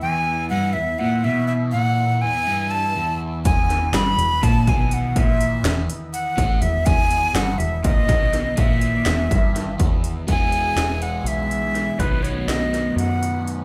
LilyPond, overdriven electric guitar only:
\new Staff \with { instrumentName = "Overdriven electric guitar" } { \clef bass \time 7/8 \key e \major \tempo 4 = 123 e,4 g,8 e,8 ais,8 b,4 | ais,4 e,8 g,4 e,4 | e,4 g,8 e,8 ais,8 b,4 | ais,4 e,8 r4 a,8 e,8 |
e,4 g,8 e,8 ais,8 b,4 | ais,4 e,8 g,4 e,4 | <e gis b e'>2.~ <e gis b e'>8 | <b, dis fis b dis'>2.~ <b, dis fis b dis'>8 | }